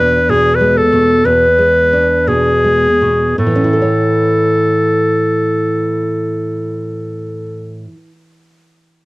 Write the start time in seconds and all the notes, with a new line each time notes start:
Already playing: E2 B2 B4
0.00 D4
0.29 B2 G#4
0.55 B4
0.60 G#3
0.77 A4
0.92 B2
1.25 E2 B4
1.58 G#3
1.93 D4
2.27 B2 G#4
2.64 G#3
3.02 B2
3.38 A2 A4
3.46 E3
3.55 C#4
3.64 E4
3.73 A4
3.82 C#5